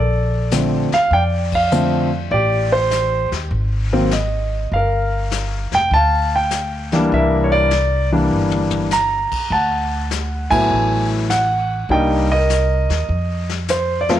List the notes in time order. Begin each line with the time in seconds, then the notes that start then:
Already playing: A#1 A4 D5
0.51 D3 F3 A3 C4, snare, hi-hat pedal
0.92 F5, muted upright bass stroke, snare
1.11 F2 D5 G5, brush sweep
1.52 F5, kick, ride
1.71 D3 F3 A3 C4, hi-hat pedal
2.31 A1 G4 D5, brush sweep
2.72 C5
2.91 snare, hi-hat pedal
3.32 D#2, snare
3.51 G#1, brush sweep
3.93 D#3 F#3 A#3 C4
4.11 D#5, snare, hi-hat pedal
4.71 G1 F5, brush sweep
4.76 A#4
5.31 snare, hi-hat pedal
5.72 F1 G5, snare
5.91 D2 A5, brush sweep
5.96 F5
6.36 G5
6.50 snare, hi-hat pedal
6.92 E3 G3 A#3 D4, snare
7.12 C2 E5, brush sweep
7.16 A#4
7.44 C#5
7.52 D5
7.71 snare, hi-hat pedal
8.12 E3 G3 A#3 D4
8.31 G1
8.51 high tom
8.71 high tom
8.91 A#5, snare, hi-hat pedal
9.32 muted upright bass stroke, kick, crash
9.50 D2 F#5 A5, brush sweep
10.11 snare, hi-hat pedal
10.50 A2 F#3 A3 B3 E4 G#5, kick, ride
10.70 A1, brush sweep
11.30 F#5, snare, hi-hat pedal
11.89 C2 G3 A#3 D4 D#4 G5, brush sweep
11.93 D#5
12.32 A#4 D#5
12.49 snare, hi-hat pedal
12.89 D#2, snare
13.09 F2, brush sweep
13.49 snare
13.68 C5, snare, hi-hat pedal
14.01 D5
14.09 F3 A3 C4 F4 C5, snare